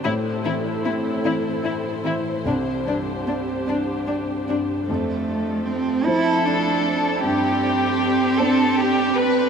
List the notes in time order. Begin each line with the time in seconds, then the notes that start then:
0.04 A2 C4 E4 A4 C5
0.44 E3 C4 E4
0.85 C4 E4
1.24 E3 C4 E4
1.63 C4 E4
2.04 E3 C4 E4
2.45 C2 C4 D4 G4
2.86 G2 C4 D4
3.27 C4 D4
3.67 G2 C4 D4
4.07 C4 D4
4.48 G2 C4 D4
4.87 F2 F3 A3 C4 A4
5.65 C4
6.05 F3 C4 E4 A4 C5
6.46 D4
7.23 G2 C4 D4 G4
8.38 C4 D4 A4 D5
8.77 G4
9.17 B4